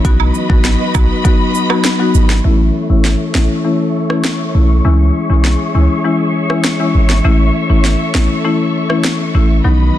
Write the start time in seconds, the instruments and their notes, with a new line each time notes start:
0.05 808-style bass B1, marimba F#3 B3 D#4 F#4, string section F#4 B4 D#5 B5, kick, closed hi-hat
0.20 high woodblock
0.34 cabasa
0.49 808-style bass A1, marimba F#3 B3 D#4 F#4, kick
0.65 snare, closed hi-hat
0.94 808-style bass B1, marimba F#3 B3 D#4 F#4, kick, cabasa, high woodblock
1.24 marimba F#3 B3 D#4 F#4, kick, closed hi-hat
1.55 cabasa
1.69 marimba F#3 B3 D#4 F#4, cross-stick, high woodblock
1.84 snare, closed hi-hat
1.99 marimba F#3 B3 D#4 F#4
2.15 808-style bass G#1, cabasa
2.30 snare
2.44 808-style bass A1, marimba E3 A3 C#4 E4, string section A4 C#5 E5 C#6
2.89 808-style bass G#1, marimba E3 A3 C#4 E4
3.05 snare
3.34 808-style bass A1, marimba E3 A3 C#4 E4, snare
3.64 marimba E3 A3 C#4 E4
4.09 marimba E3 A3 C#4 E4, cross-stick
4.24 snare
4.54 808-style bass B1, marimba E3 A3 C#4 E4
4.85 808-style bass C#2, marimba E3 G#3 C#4 E4, string section G#4 C#5 E5
5.29 808-style bass B1, marimba E3 G#3 C#4 E4
5.45 snare
5.74 808-style bass C#2, marimba E3 G#3 C#4 E4
6.04 marimba E3 G#3 C#4 E4
6.50 marimba E3 G#3 C#4 E4, cross-stick
6.64 snare
6.80 marimba E3 G#3 C#4 E4
6.95 808-style bass G#1
7.10 snare
7.24 808-style bass A1, marimba E3 A3 C#4 E4, string section A4
7.69 808-style bass G#1, marimba E3 A3 C#4 E4
7.85 snare
8.14 808-style bass A1, marimba E3 A3 C#4 E4, snare
8.44 marimba E3 A3 C#4 E4
8.89 marimba E3 A3 C#4 E4, cross-stick
9.04 snare
9.34 808-style bass A1, marimba E3 A3 C#4 E4
9.64 808-style bass B1, marimba D#3 F#3 B3 D#4, string section F#4 B4 D#5 B5